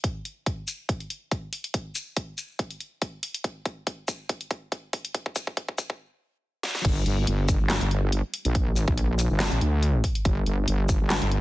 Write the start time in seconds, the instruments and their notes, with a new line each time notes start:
0.04 kick, closed hi-hat
0.25 closed hi-hat
0.46 kick, closed hi-hat
0.68 closed hi-hat, shaker
0.89 kick, closed hi-hat
1.00 closed hi-hat
1.10 closed hi-hat
1.31 kick, closed hi-hat
1.53 open hi-hat
1.64 closed hi-hat
1.74 kick, closed hi-hat
1.95 closed hi-hat, shaker
2.17 kick, closed hi-hat
2.38 closed hi-hat, shaker
2.59 kick, closed hi-hat
2.71 closed hi-hat
2.80 closed hi-hat
3.02 kick, closed hi-hat
3.23 open hi-hat
3.34 closed hi-hat
3.44 kick, closed hi-hat
3.65 kick, closed hi-hat
3.87 kick, closed hi-hat
4.08 kick, closed hi-hat, shaker
4.29 kick, closed hi-hat
4.41 closed hi-hat
4.51 kick, closed hi-hat
4.72 kick, closed hi-hat
4.93 kick, open hi-hat
5.05 closed hi-hat
5.14 kick, closed hi-hat
5.26 kick
5.36 kick, closed hi-hat, shaker
5.47 kick
5.57 kick, closed hi-hat
5.68 kick
5.78 kick, closed hi-hat, shaker
5.90 kick
6.63 snare
6.75 snare
6.85 wobble bass G1, kick, closed hi-hat, crash
7.06 wobble bass G1, closed hi-hat
7.27 wobble bass G1, closed hi-hat
7.48 kick, closed hi-hat, shaker
7.60 wobble bass G1
7.70 snare, clap, closed hi-hat
7.81 wobble bass G1, closed hi-hat
7.91 closed hi-hat
8.12 closed hi-hat
8.34 open hi-hat
8.45 wobble bass A#1, closed hi-hat
8.55 kick, closed hi-hat
8.76 closed hi-hat, shaker
8.88 wobble bass A#1, kick
8.98 closed hi-hat
9.19 closed hi-hat, shaker
9.30 wobble bass G1
9.40 snare, clap, closed hi-hat
9.52 wobble bass A1, closed hi-hat
9.61 wobble bass D2, closed hi-hat
9.83 closed hi-hat
10.04 kick, open hi-hat
10.15 closed hi-hat
10.25 wobble bass G1, kick, closed hi-hat
10.46 wobble bass G1, closed hi-hat
10.68 wobble bass G1, closed hi-hat
10.89 kick, closed hi-hat, shaker
11.01 wobble bass G1
11.10 snare, clap, closed hi-hat
11.22 wobble bass G1, closed hi-hat
11.32 closed hi-hat